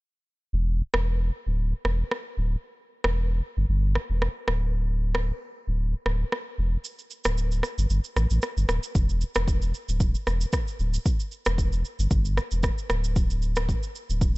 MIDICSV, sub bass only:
0, 0, Header, 1, 2, 480
1, 0, Start_track
1, 0, Key_signature, 1, "minor"
1, 0, Tempo, 526316
1, 483, Time_signature, 4, 2, 24, 8
1, 13111, End_track
2, 0, Start_track
2, 0, Title_t, "Sub bass"
2, 0, Program_c, 0, 38
2, 484, Note_on_c, 0, 28, 106
2, 744, Note_off_c, 0, 28, 0
2, 856, Note_on_c, 0, 28, 95
2, 1192, Note_off_c, 0, 28, 0
2, 1336, Note_on_c, 0, 26, 94
2, 1580, Note_off_c, 0, 26, 0
2, 1684, Note_on_c, 0, 28, 92
2, 1852, Note_off_c, 0, 28, 0
2, 2164, Note_on_c, 0, 26, 90
2, 2332, Note_off_c, 0, 26, 0
2, 2776, Note_on_c, 0, 28, 98
2, 3112, Note_off_c, 0, 28, 0
2, 3256, Note_on_c, 0, 31, 90
2, 3331, Note_off_c, 0, 31, 0
2, 3364, Note_on_c, 0, 31, 103
2, 3624, Note_off_c, 0, 31, 0
2, 3736, Note_on_c, 0, 28, 89
2, 3904, Note_off_c, 0, 28, 0
2, 4083, Note_on_c, 0, 26, 88
2, 4848, Note_off_c, 0, 26, 0
2, 5175, Note_on_c, 0, 26, 89
2, 5419, Note_off_c, 0, 26, 0
2, 5523, Note_on_c, 0, 26, 87
2, 5691, Note_off_c, 0, 26, 0
2, 6003, Note_on_c, 0, 28, 88
2, 6171, Note_off_c, 0, 28, 0
2, 6615, Note_on_c, 0, 26, 94
2, 6951, Note_off_c, 0, 26, 0
2, 7095, Note_on_c, 0, 31, 95
2, 7171, Note_off_c, 0, 31, 0
2, 7203, Note_on_c, 0, 31, 100
2, 7296, Note_off_c, 0, 31, 0
2, 7443, Note_on_c, 0, 33, 96
2, 7535, Note_off_c, 0, 33, 0
2, 7575, Note_on_c, 0, 33, 89
2, 7650, Note_off_c, 0, 33, 0
2, 7815, Note_on_c, 0, 31, 91
2, 7891, Note_off_c, 0, 31, 0
2, 7923, Note_on_c, 0, 26, 93
2, 8015, Note_off_c, 0, 26, 0
2, 8163, Note_on_c, 0, 28, 102
2, 8424, Note_off_c, 0, 28, 0
2, 8535, Note_on_c, 0, 28, 92
2, 8871, Note_off_c, 0, 28, 0
2, 9015, Note_on_c, 0, 26, 93
2, 9259, Note_off_c, 0, 26, 0
2, 9363, Note_on_c, 0, 28, 90
2, 9531, Note_off_c, 0, 28, 0
2, 9843, Note_on_c, 0, 26, 92
2, 10012, Note_off_c, 0, 26, 0
2, 10456, Note_on_c, 0, 28, 105
2, 10792, Note_off_c, 0, 28, 0
2, 10936, Note_on_c, 0, 31, 90
2, 11011, Note_off_c, 0, 31, 0
2, 11042, Note_on_c, 0, 31, 99
2, 11303, Note_off_c, 0, 31, 0
2, 11415, Note_on_c, 0, 28, 86
2, 11583, Note_off_c, 0, 28, 0
2, 11763, Note_on_c, 0, 26, 90
2, 12528, Note_off_c, 0, 26, 0
2, 12854, Note_on_c, 0, 26, 88
2, 13099, Note_off_c, 0, 26, 0
2, 13111, End_track
0, 0, End_of_file